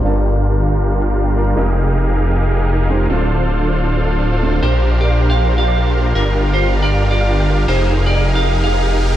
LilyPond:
<<
  \new Staff \with { instrumentName = "Clean electric guitar" } { \time 4/4 \key g \minor \tempo 4 = 157 r1 | r1 | r1 | c''8 r8 d''8 r16 f''8 r16 f''4~ f''16 r16 |
bes'8 r8 c''8 r16 d''8 r16 d''4~ d''16 r16 | c''8 r8 d''8 r16 f''8 r16 f''4~ f''16 r16 | }
  \new Staff \with { instrumentName = "Synth arpeggio sound" } { \time 4/4 \key g \minor r1 | r1 | r1 | g'16 c''16 g'16 d''16 g'16 f''16 g'16 g''16 g'16 c''16 g'16 d''16 g'16 f''16 g'16 bes''16 |
g'16 d''16 g'16 f''16 g'16 g''16 g'16 bes''16 g'16 d''16 g'16 f''16 g'16 g''16 g'16 d'''16 | g'16 bes'16 g'16 c''16 g'16 ees''16 g'16 f''16 g'16 bes'16 g'16 c''16 g'16 ees''16 g'16 g''16 | }
  \new Staff \with { instrumentName = "Supersaw synth" } { \time 4/4 \key g \minor <d' f' g' bes' f''>1 | <ees' g' aes' bes' f''>1 | <d' f' a' c'' f''>1 | <d' g' bes' c'' f''>1 |
<d' f' g' bes' f''>1 | <ees' g' aes' bes' f''>1 | }
  \new Staff \with { instrumentName = "Grand piano" } { \time 4/4 \key g \minor <g bes d' f' a''>2.~ <g bes d' f' a''>8 <g bes d' f' bes'>8 | <aes c' ees' bes' g''>2.~ <aes c' ees' bes' g''>8 <aes c' ees' g' c''>8 | <a c' d' f' a'>2.~ <a c' d' f' a'>8 <a c' d' f' c''>8 | r1 |
r1 | r1 | }
  \new Staff \with { instrumentName = "Detuned saw bass" } { \clef bass \time 4/4 \key g \minor g,,1 | f,,1 | d,,1 | bes,,1 |
g,,1 | f,,1 | }
>>